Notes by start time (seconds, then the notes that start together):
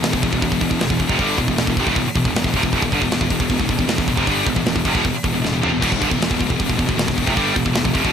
0.03 E1 E2 B2, snare, open hi-hat
0.13 E1 E2 B2, kick
0.23 E1 E2 B2, kick, open hi-hat
0.32 E1 E2 B2, kick
0.42 E1 E2 B2, kick, open hi-hat
0.51 E1 E2 B2, kick
0.59 E1 E2 B2, kick, open hi-hat
0.63 B2
0.71 E1 E2 B2, kick
0.80 E1 E2 B2, snare, open hi-hat
0.89 E1 E2 B2, kick
0.98 E1 E2, kick, open hi-hat
1.02 E2 B2
1.07 F1 F2, kick
1.11 F2 C3
1.18 G1 G2 D3 G3, kick, open hi-hat
1.22 D3 G3
1.38 E1 E2 B2, kick, open hi-hat
1.46 E1 E2 B2, kick
1.51 E2 B2
1.56 E1 E2 B2, snare, open hi-hat
1.61 B2
1.67 E1 E2 B2, kick
1.77 F1 F2 C3, kick, open hi-hat
1.86 E1 E2 B2, kick
1.96 E1 E2 B2, kick, open hi-hat
2.07 muted distorted electric guitar stroke, muted picked electric bass stroke
2.15 E1 E2 B2, kick, open hi-hat
2.25 E1 E2 B2, kick
2.36 E1 E2 B2, snare, open hi-hat
2.44 E1 E2 B2, kick, snare
2.54 F1 F2 C3, kick, open hi-hat
2.63 E1 E2 B2, kick
2.72 E1 E2, kick, open hi-hat
2.76 B2
2.82 E1 E2 B2, kick
2.92 G1 G2 D3, kick, open hi-hat
3.02 E1 E2 B2, kick
3.10 E1 E2, snare, open hi-hat
3.14 B2
3.20 E1 E2 B2, kick
3.30 E1 E2 B2, kick, open hi-hat
3.40 E1 E2 B2, kick
3.50 E1 E2 B2, kick, open hi-hat
3.59 E1 E2 B2, kick
3.69 E1 E2 B2, kick, open hi-hat
3.79 E1 E2 B2, kick
3.87 E1 E2 B2, snare, open hi-hat
3.98 E1 E2 B2, kick, snare
4.07 E1 E2 B2, kick, open hi-hat
4.17 F1 F2 C3, kick
4.27 G1 G2 D3 G3, kick, open hi-hat
4.46 E1 E2 B2, kick, open hi-hat
4.56 E1 E2 B2, kick
4.66 E1 E2 B2, snare, open hi-hat
4.75 E1 E2 B2, kick
4.84 F1 F2 C3, kick, open hi-hat
4.95 E1 E2 B2, kick
5.04 E1 E2 B2, kick, open hi-hat
5.14 muted picked electric bass stroke, muted distorted electric guitar stroke
5.24 E1 E2 B2, kick, open hi-hat
5.33 E1 E2 B2
5.43 E1 E2 B2, snare
5.53 E1 E2 B2
5.62 F1 F2 C3, floor tom
5.70 E1 E2 B2
5.80 E1 E2 B2, kick, crash
5.89 E1 E2 B2, kick
5.98 G1 G2 D3, kick
6.02 open hi-hat
6.08 E1 E2 B2, kick
6.12 E2 B2
6.18 E1 E2 B2, open hi-hat
6.22 E2, snare
6.28 E1 E2 B2, kick
6.36 E1 E2 B2
6.41 E2 B2, kick, open hi-hat
6.46 E1 E2 B2, kick
6.56 E1 E2 B2
6.60 E2, kick, open hi-hat
6.66 E1 E2 B2, kick
6.77 E1 E2 B2, kick, open hi-hat
6.86 E1 E2 B2, kick
6.96 E1 E2 B2, snare, open hi-hat
7.04 E2 B2, kick
7.09 E1, snare
7.14 E2 B2
7.18 E1, kick, open hi-hat
7.22 F2 C3
7.26 F1 F2, kick
7.33 G1 G2 D3 G3, kick, open hi-hat
7.55 E1 E2 B2, kick, open hi-hat
7.65 E1 E2 B2, kick
7.73 E1 E2 B2, snare, open hi-hat
7.84 E1 E2 B2, kick
7.94 F1 F2 C3, kick, open hi-hat
8.04 E1 E2 B2, kick